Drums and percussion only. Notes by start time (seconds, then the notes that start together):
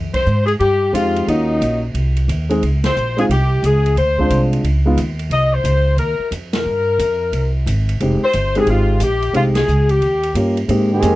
0.14 kick, ride
0.26 hi-hat pedal
0.48 ride
0.60 ride
0.95 hi-hat pedal, ride
1.16 ride
1.28 ride
1.62 hi-hat pedal, ride
1.95 ride
2.17 ride
2.29 hi-hat pedal, ride
2.50 ride
2.63 ride
2.84 snare, ride
2.96 hi-hat pedal
3.18 ride
3.31 ride
3.64 hi-hat pedal, ride
3.86 ride
3.97 ride
4.19 kick
4.30 hi-hat pedal, ride
4.53 ride
4.64 ride
4.97 hi-hat pedal, ride
5.19 ride
5.31 ride
5.65 hi-hat pedal, ride
5.98 ride
6.32 hi-hat pedal, ride
6.53 snare, ride
6.99 hi-hat pedal, ride
7.33 ride
7.67 hi-hat pedal, ride
7.89 ride
8.00 ride
8.33 hi-hat pedal, ride
8.55 ride
8.67 ride
9.00 hi-hat pedal, ride
9.22 ride
9.34 ride
9.55 snare, ride
9.68 hi-hat pedal
9.89 ride
10.02 ride
10.23 ride
10.35 hi-hat pedal, ride
10.57 ride
10.69 ride
11.02 hi-hat pedal, ride